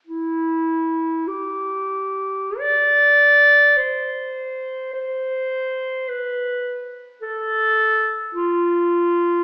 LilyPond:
\new Staff \with { instrumentName = "Clarinet" } { \time 4/4 \key c \major \tempo 4 = 52 e'4 g'4 d''4 c''4 | c''4 b'8. r16 a'4 f'4 | }